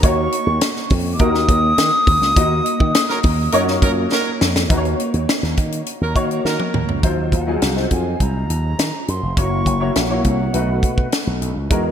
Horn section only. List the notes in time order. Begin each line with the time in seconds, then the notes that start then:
3.10 F#3 D#4 A#4
3.53 F#3 D#4 A#4
3.82 F#3 D#4 A#4
4.12 F#3 D#4 A#4
6.02 F#3 D#4 A#4
6.46 F#3 D#4 A#4